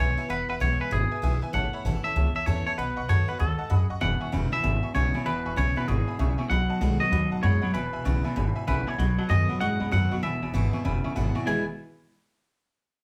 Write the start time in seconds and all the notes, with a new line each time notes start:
Already playing: B2
0.00 B1 E3 G#3 B3 E4 B4 C#5 E5 G#5
0.17 B3 E4 B4 E5 G#5
0.29 E1 E2 B4 E5 F#5
0.49 E1 B4 E5 F#5
0.60 B1 E3 G#3 B3 E4 B4 C#5 E5 F#5
0.80 B4 E5 G#5, muted upright bass stroke
0.91 G#1 B2 G#4 B4 E5 B5
1.11 B4 E5 G#5, muted upright bass stroke
1.22 B1 E3 G#3 B3 E4 B4 E5 G#5
1.42 B3 E4 B4 E5 G#5
1.53 A1 A2 C#5 E5 F#5 A5
1.73 C#5 E5 B5, muted upright bass stroke
1.85 A1 E3 A3 C#4 E4 C#5 E5 A5
2.04 C#4 E4 C#5 E5 A5, muted upright bass stroke
2.16 C#2 E2 C#5 E5 A5
2.35 C#5 E5 A5, muted upright bass stroke
2.46 E2 E3 A3 C#4 E4 C#5 E5 A5
2.66 C#4 E4 C#5 E5 A5, muted upright bass stroke
2.77 B1 B2 B4 D#5 F#5 B5
2.96 B1 D#5 F#5 C#6
3.08 F#2 D#3 A3 B3 F#4 C#5 D#5 F#5 A5
3.28 B3 F#4 B4 D#5 F#5 B5, muted upright bass stroke
3.39 D#2 G#2 A4 D#5 F#5 C#6
3.58 D#5 F#5 A5
3.70 F#2 D#5 F#5 B5
3.75 G#4
3.90 D#5 F#5 C#6, muted upright bass stroke
4.01 E1 E2 B2 E5 F#5 G#5 B5
4.21 E5 G#5 C#6, muted upright bass stroke
4.32 E1 E2 C#3 E3 G#3 B3 E4 E5 G#5 B5
4.52 E2 B2 B3 E4 E5 G#5 B5, muted upright bass stroke
4.63 G#1 E2 B2 E5 G#5 B5
4.83 E5 G#5 C#6, muted upright bass stroke
4.94 B1 E2 C#3 E3 G#3 B3 E4 C#5 E5 G#5 C#6
5.14 E2 B2 B3 E4 E5 G#5 B5, muted upright bass stroke
5.26 E1 E2 B2 B4 E5 G#5 B5
5.46 E1 E5 G#5 C#6
5.56 B1 E2 C#3 E3 G#3 B3 E4 C#5 E5 G#5 B5
5.76 E2 B2 B3 E4 B4 E5 G#5 B5, muted upright bass stroke
5.88 G#1 E2 G#2 B2 G#4 E5 G#5 C#6
6.08 E5 G#5 B5, muted upright bass stroke
6.19 B1 E2 A2 C#3 E5 G#5 C#6
6.38 E2 B2 E5 G#5 C#6, muted upright bass stroke
6.50 B1 B2 F#3 D#5 F#5 B5
6.69 D#5 F#5 A5, muted upright bass stroke
6.80 B1 B2 D#3 G#3 A3 B3 F#4 D#5 F#5 B5
7.00 B2 F#3 B3 F#4 D#5 F#5 C#6, muted upright bass stroke
7.11 D#2 G#2 B2 F#3 D#5 F#5 B5
7.31 D#5 F#5 A5, muted upright bass stroke
7.43 F#2 B2 G#3 C#5 D#5 F#5 B5
7.61 B2 F#3 D#5 F#5 B5, muted upright bass stroke
7.73 E1 E2 B2 B4 E5 G#5 B5
7.93 E1 E5 G#5 B5
8.04 B1 E2 C#3 E3 G#3 B3 E4 E5 G#5 C#6
8.24 E2 B2 B3 E4 E5 G#5 B5, muted upright bass stroke
8.36 G#1 E2 G#2 B2 E5 G#5 B5
8.56 E5 G#5 B5, muted upright bass stroke
8.67 A#1 E2 A2 C#3 B4 E5 G#5 B5
8.87 E2 B2 C#5 E5 G#5 B5, muted upright bass stroke
8.98 B1 B2 F#3 D#5 F#5 B5
9.18 B2 F#3 D#5 F#5 A5, muted upright bass stroke
9.29 F#2 B2 D#3 F#3 A3 B3 F#4 D#5 F#5 G#5
9.49 B2 F#3 B3 F#4 D#5 F#5 B5
9.61 F#2 G#2 B2 G#3 D#5 F#5 C#6
9.80 B2 G#3 D#5 F#5 B5
9.91 F#2 B2 D#3 F#3 A3 B3 F#4 D#5 F#5 B5
10.11 B2 F#3 B3 F#4 D#5 F#5 C#6, muted upright bass stroke
10.23 E1 E2 B2 E5 G#5 B5
10.42 E1 E2 B2 E5 G#5 B5
10.54 G#1 E2 B2 E3 G#3 B3 E4 E5 G#5 C#6
10.73 E2 B2 B3 E4 E5 G#5 C#6
10.85 E1 E2 B2 C#3 E5 G#5 B5
11.04 E2 C#3 E5 G#5 C#6, muted upright bass stroke
11.15 G#1 E2 B2 E3 G#3 B3 E4 E5 F#5 G#5 B5
11.35 E2 B2 B3 E4 E5 G#5 C#6
11.46 E1 E2 B2 E3 G#3 B3 E4 G#4 E5 G#5 B5